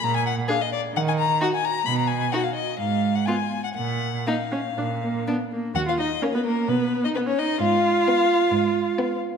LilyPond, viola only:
\new Staff \with { instrumentName = "Viola" } { \time 4/4 \key ees \minor \tempo 4 = 129 r4 d'4 r4 ees'4 | r4 dis'4 r4 ces'4 | r4 bes8 des'8 d'8 bes8 ces'8 bes8 | ges'16 f'16 ees'8 des'16 ces'16 bes8 b8. dis'16 b16 cis'16 dis'8 |
f'2.~ f'8 r8 | }